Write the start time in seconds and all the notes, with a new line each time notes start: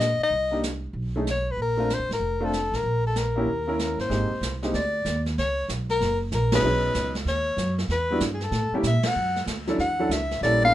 Already playing: A#2 D#5
0.00 snare, hi-hat pedal
0.19 muted upright bass stroke
0.23 D#5
0.30 C2, brush sweep
0.51 A#3 D4 D#4 G4
0.63 snare, hi-hat pedal
0.93 B1, brush sweep
1.16 A3 C#4 D#4 G#4
1.27 snare, hi-hat pedal
1.31 C#5
1.51 B4
1.57 A#1, brush sweep
1.62 A#4
1.77 A3 C4 D4 F4
1.90 C5, snare, hi-hat pedal
1.99 C2
2.09 A1, snare
2.13 A#4
2.19 F1, brush sweep
2.41 A3 C4 D4 F4
2.45 A4
2.53 snare, hi-hat pedal
2.71 A1, snare
2.75 A#4
2.83 A#1, brush sweep
3.07 A4
3.16 A#4, snare, hi-hat pedal
3.36 A#3 C#4 E4 G4
3.45 D#2, brush sweep
3.67 A#3 C#4 E4 A#4
3.79 A#4, snare, hi-hat pedal
3.98 G1 C5, snare
4.10 G#1 G#3 A#3 C4 D#4 G4, brush sweep, snare
4.30 muted upright bass stroke
4.41 C2, snare, hi-hat pedal
4.63 G#3 A#3 C4 D#4 G4, snare
4.74 D2 D5, brush sweep, snare
5.05 D#2, snare, hi-hat pedal
5.26 snare
5.38 C#2 C#5, brush sweep, snare
5.69 B1, snare, hi-hat pedal
5.89 A#4, snare
6.00 F#1, brush sweep, snare
6.32 A#1 A#4, snare, hi-hat pedal
6.52 F#3 B3 C#4 D#4 G#4 B4, snare, ride
6.63 B1 F#3 B3 C#4 D#4, brush sweep
6.67 G#4
6.94 C#2, snare, hi-hat pedal
7.15 snare
7.25 D#2 C#5, brush sweep, snare
7.57 F#2, snare, hi-hat pedal
7.78 snare
7.88 E2 B4, brush sweep, snare
8.10 G3 B3 D4 E4 F#4
8.20 G2, snare, hi-hat pedal
8.34 G#4
8.40 snare
8.44 A4
8.51 A2, brush sweep, snare
8.72 G3 A#3 C#4 E4 G4, muted upright bass stroke
8.83 A#2, snare, hi-hat pedal
8.87 E5
9.03 muted upright bass stroke, snare, ride
9.07 F#5
9.15 F#2, brush sweep
9.36 snare
9.46 D2, snare, hi-hat pedal
9.67 F#3 C#4 D4 E4 A4, snare
9.78 E2 F#5, brush sweep, snare
9.99 F#3 C#4 D4 E4 A4
10.09 C#2 E5, snare, hi-hat pedal
10.31 snare
10.41 A#1 G3 A#3 C#4 E4 A4 D5, brush sweep, snare
10.63 G#3 B3 D4 F4 A#4 F5